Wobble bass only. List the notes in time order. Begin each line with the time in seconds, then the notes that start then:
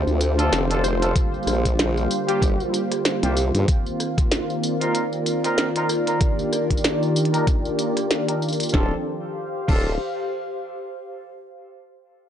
0.07 D2
0.52 F1
1.47 A#1
2.42 G1
3.23 C2
3.54 G2
8.74 D1
9.68 D1